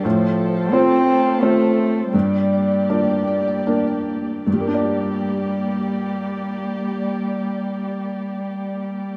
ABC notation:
X:1
M:3/4
L:1/16
Q:1/4=76
K:Gm
V:1 name="Harp"
F c c F A c F f A F3 | G d d G B d G g B G3- | G12- | G12 |]
V:2 name="String section"
[A,Ac]12 | [B,Gd]12 | [B,Gd]12- | [B,Gd]12 |]
V:3 name="Felt piano"
A,,4 [CFc]4 [CFc]4 | G,,4 [B,Dd]4 [B,Dd]4 | [G,,G,B,Dd]12- | [G,,G,B,Dd]12 |]
V:4 name="Cello" clef=bass
F,4 C4 A,4 | G,8 z4 | G,12- | G,12 |]